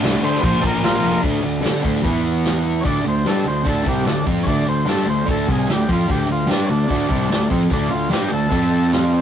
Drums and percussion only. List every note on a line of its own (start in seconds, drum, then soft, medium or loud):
0.04 snare loud
0.04 crash medium
0.24 crash medium
0.35 snare soft
0.43 kick loud
0.43 crash medium
0.63 kick medium
0.63 crash medium
0.84 snare loud
0.84 crash medium
1.04 crash medium
1.23 kick loud
1.23 open hi-hat medium
1.43 open hi-hat medium
1.64 snare loud
1.64 open hi-hat medium
1.84 kick loud
1.84 open hi-hat medium
1.95 snare soft
2.05 kick loud
2.05 open hi-hat medium
2.25 open hi-hat medium
2.44 snare loud
2.44 open hi-hat medium
2.65 open hi-hat medium
2.85 kick loud
2.85 open hi-hat medium
3.25 snare loud
3.25 open hi-hat medium
3.66 kick loud
3.66 open hi-hat medium
3.86 kick loud
4.06 snare loud
4.06 open hi-hat medium
4.27 kick loud
4.47 kick loud
4.47 open hi-hat medium
4.87 snare loud
4.87 open hi-hat medium
4.99 snare soft
5.28 kick loud
5.28 open hi-hat medium
5.49 kick loud
5.69 snare loud
5.69 open hi-hat medium
5.89 kick loud
6.10 kick loud
6.10 open hi-hat medium
6.50 snare loud
6.50 open hi-hat medium
6.90 kick loud
6.90 open hi-hat medium
7.11 kick loud
7.31 snare loud
7.31 open hi-hat medium
7.51 kick loud
7.71 kick loud
7.71 open hi-hat medium
8.12 snare loud
8.12 open hi-hat medium
8.52 kick loud
8.52 open hi-hat medium
8.92 snare loud
8.92 open hi-hat medium